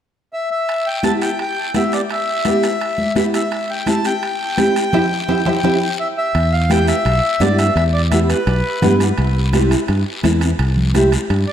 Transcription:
0.33 0.50 E5 medium
0.51 0.87 E5 medium
0.69 high timbale medium
0.69 long guiro medium
0.86 1.03 G5 medium
1.02 1.28 B3 medium
1.02 1.28 E4 medium
1.02 1.28 G4 medium
1.02 1.12 A5 medium
1.02 high conga medium
1.02 high timbale medium
1.02 short guiro medium
1.22 1.38 G5 medium
1.22 high timbale medium
1.22 short guiro medium
1.39 1.73 G5 medium
1.39 high timbale medium
1.39 long guiro medium
1.74 1.99 B3 medium
1.74 1.99 E4 medium
1.74 1.99 G4 medium
1.74 1.93 E5 medium
1.74 high conga medium
1.74 high timbale medium
1.74 short guiro medium
1.92 2.01 D5 medium
1.92 high timbale medium
1.92 short guiro medium
2.09 3.13 E5 medium
2.09 high timbale medium
2.09 long guiro medium
2.44 2.70 B3 medium
2.44 2.70 E4 medium
2.44 2.70 G4 medium
2.44 high conga medium
2.44 high timbale medium
2.44 short guiro medium
2.63 high timbale medium
2.63 short guiro medium
2.81 high timbale medium
2.81 long guiro medium
2.98 high conga medium
3.15 3.40 B3 medium
3.15 3.40 E4 medium
3.15 3.41 G4 medium
3.15 3.25 E5 medium
3.15 high conga medium
3.15 high timbale medium
3.15 short guiro medium
3.34 3.71 E5 medium
3.34 high timbale medium
3.34 short guiro medium
3.51 high timbale medium
3.51 long guiro medium
3.70 3.88 G5 medium
3.86 4.11 C4 medium
3.86 4.11 E4 medium
3.86 4.12 G4 medium
3.86 4.06 A5 medium
3.86 high conga medium
3.86 high timbale medium
3.86 short guiro medium
4.04 5.96 G5 medium
4.04 high timbale medium
4.04 short guiro medium
4.23 high timbale medium
4.23 long guiro medium
4.57 4.82 C4 medium
4.57 4.82 E4 medium
4.57 4.83 G4 medium
4.57 high conga medium
4.57 high timbale medium
4.57 short guiro medium
4.76 high timbale medium
4.76 short guiro medium
4.93 5.04 C4 medium
4.93 5.04 E4 medium
4.93 5.04 G4 medium
4.93 low conga medium
4.93 high timbale medium
4.93 long guiro medium
5.28 5.40 C4 medium
5.28 5.40 E4 medium
5.28 5.40 G4 medium
5.28 low conga medium
5.28 high timbale medium
5.28 long guiro medium
5.46 5.57 C4 medium
5.46 5.57 E4 loud
5.46 5.57 G4 medium
5.46 low conga medium
5.46 high timbale medium
5.46 long guiro medium
5.63 5.75 C4 medium
5.63 5.75 E4 medium
5.63 5.75 G4 medium
5.63 low conga medium
5.63 high timbale medium
5.63 long guiro medium
6.00 6.08 E5 medium
6.18 6.54 E5 medium
6.35 6.91 E2 medium
6.35 high timbale medium
6.35 long guiro medium
6.52 6.71 F5 medium
6.69 6.94 B3 medium
6.69 6.95 E4 medium
6.69 6.95 G4 medium
6.69 6.86 G5 loud
6.69 high conga medium
6.69 high timbale medium
6.69 short guiro medium
6.87 7.42 E5 loud
6.87 high timbale medium
6.87 short guiro medium
7.05 7.19 B1 medium
7.05 high timbale medium
7.05 long guiro medium
7.40 7.69 G2 medium
7.40 7.65 B3 medium
7.40 7.65 E4 medium
7.40 7.66 G4 medium
7.40 7.57 D5 medium
7.40 high conga medium
7.40 high timbale medium
7.40 low timbale medium
7.40 short guiro medium
7.58 7.74 E5 medium
7.58 high timbale medium
7.58 short guiro medium
7.76 8.32 E2 medium
7.76 7.84 E5 loud
7.76 high timbale medium
7.76 long guiro medium
7.93 8.01 D5 medium
8.11 8.36 B3 medium
8.11 8.36 E4 medium
8.11 8.36 G4 medium
8.11 8.19 E5 medium
8.11 high conga medium
8.11 high timbale medium
8.11 short guiro medium
8.29 8.96 B4 medium
8.29 high timbale medium
8.29 short guiro medium
8.47 8.61 B1 medium
8.47 high timbale medium
8.47 long guiro medium
8.82 9.11 G2 medium
8.82 9.07 B3 medium
8.82 9.07 E4 medium
8.82 9.07 G4 medium
8.82 high conga medium
8.82 low conga medium
8.82 high timbale medium
8.82 short guiro medium
9.00 high timbale medium
9.00 short guiro medium
9.18 9.75 C2 medium
9.18 high timbale medium
9.18 long guiro medium
9.53 9.78 C4 medium
9.53 9.78 E4 medium
9.53 9.78 G4 medium
9.53 high conga medium
9.53 high timbale medium
9.53 short guiro medium
9.71 high timbale medium
9.71 short guiro medium
9.88 10.03 G2 medium
9.88 high timbale medium
9.88 long guiro medium
10.23 10.52 E2 medium
10.23 10.48 C4 medium
10.23 10.48 E4 medium
10.23 10.48 A4 medium
10.23 high conga medium
10.23 high timbale medium
10.23 short guiro medium
10.41 high timbale medium
10.41 short guiro medium
10.59 11.16 C2 medium
10.59 high timbale medium
10.59 long guiro medium
10.77 low conga medium
10.94 11.19 C4 medium
10.94 11.19 E4 medium
10.94 11.19 G4 medium
10.94 high conga medium
10.94 high timbale medium
10.94 short guiro medium
11.12 high timbale medium
11.12 short guiro medium
11.30 11.44 G2 medium
11.30 high timbale medium
11.30 long guiro medium
11.47 11.53 D5 medium

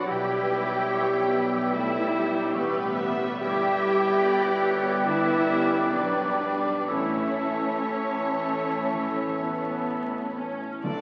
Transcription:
0.00 0.11 F#3 medium
0.00 0.11 D4 soft
0.00 0.11 F#4 medium
0.00 3.79 B4 soft
0.00 0.11 D5 medium
0.00 0.11 F#5 medium
0.00 0.11 B5 medium
0.00 3.17 B5 medium
0.04 2.50 B1 medium
0.04 0.90 G3 medium
0.04 3.10 G3 medium
0.04 1.72 E4 medium
0.04 1.68 G4 loud
0.04 1.69 G4 loud
0.04 0.90 B4 medium
0.04 3.10 C#5 medium
0.04 3.11 E5 medium
0.04 1.69 G5 loud
0.09 1.72 B2 medium
0.09 3.15 G5 medium
0.28 1.92 E4 soft
0.50 2.12 G4 medium
0.71 1.31 E5 medium
0.89 1.71 B3 medium
0.89 1.31 C#5 medium
0.89 2.52 C#6 medium
1.11 2.74 G5 medium
1.31 2.51 B4 medium
1.31 2.32 E5 medium
1.52 3.21 C#5 medium
1.72 3.47 B2 medium
1.72 2.13 A3 medium
1.72 2.52 E4 loud
1.72 2.54 E4 loud
1.72 3.44 G4 medium
1.72 2.54 E5 loud
1.93 3.47 E4 medium
2.13 2.54 G3 medium
2.13 3.83 G4 medium
2.33 2.98 E5 medium
2.52 3.44 A1 medium
2.52 4.22 G3 medium
2.52 3.43 B3 medium
2.52 3.43 B3 loud
2.52 2.97 B4 medium
2.52 3.43 B4 medium
2.52 3.46 C#6 medium
2.75 4.44 G5 medium
2.98 3.40 E5 medium
2.98 3.47 E5 medium
3.22 3.47 C#5 medium
3.41 5.89 G1 medium
3.41 6.94 G2 medium
3.41 6.90 G3 medium
3.41 5.03 E4 medium
3.41 5.01 G4 loud
3.41 5.02 G4 loud
3.41 6.85 B4 medium
3.41 6.90 D5 medium
3.41 4.22 E5 medium
3.41 5.05 G5 loud
3.41 6.86 G5 medium
3.63 5.24 D4 medium
3.84 5.46 G4 medium
4.05 4.64 D5 medium
4.24 5.93 B3 medium
4.24 4.65 D5 medium
4.24 5.92 B5 medium
4.65 5.06 C#5 medium
4.65 5.68 D5 medium
4.85 6.64 B4 medium
5.05 6.94 D3 medium
5.05 5.48 D4 medium
5.05 5.93 E4 loud
5.05 5.78 E4 loud
5.05 6.86 B4 medium
5.05 5.93 E5 loud
5.25 6.93 D4 medium
5.47 5.93 C#4 medium
5.47 6.94 G4 medium
5.69 6.39 D5 medium
5.92 6.90 B1 medium
5.92 6.40 F#3 medium
5.92 6.01 D4 medium
5.92 6.90 D4 medium
5.92 6.89 D4 medium
5.92 6.88 D5 medium
5.92 6.94 B5 medium
6.01 6.10 E4 medium
6.10 6.19 D4 medium
6.16 6.28 E4 medium
6.16 6.94 G5 medium
6.29 6.38 D4 medium
6.37 6.89 G3 medium
6.37 6.46 E4 medium
6.37 6.94 D5 medium
6.46 6.90 D4 medium
6.65 6.94 B4 medium
6.89 10.58 A1 medium
6.89 10.80 A2 medium
6.89 10.49 E3 medium
6.89 7.79 A3 medium
6.89 10.33 C#4 medium
6.89 10.37 C#4 medium
6.89 7.79 E4 medium
6.89 10.46 A4 medium
6.89 10.37 C#5 medium
6.89 10.62 C#5 medium
6.89 10.49 E5 medium
6.89 10.45 A5 medium
7.16 9.17 A3 soft
7.41 8.66 E4 medium
7.65 8.41 A4 medium
7.91 9.38 A3 medium
7.91 9.88 A5 medium
8.16 10.11 E5 medium
8.42 9.64 A4 medium
8.67 9.40 E4 soft
8.93 10.87 E3 medium
9.18 11.01 A3 soft
9.42 10.37 B3 medium
9.42 10.59 E4 medium
9.65 10.36 A4 medium
9.89 11.01 A5 medium
10.13 10.87 E5 medium
10.37 10.84 C#4 medium
10.37 11.01 A4 medium
10.60 10.87 E4 soft
10.83 11.01 D2 medium
10.83 11.01 D3 medium
10.83 11.01 F#3 medium
10.83 11.01 A3 medium
10.83 11.01 D4 medium
10.83 11.01 F#4 medium
10.83 11.01 A4 medium
10.83 11.01 D5 medium

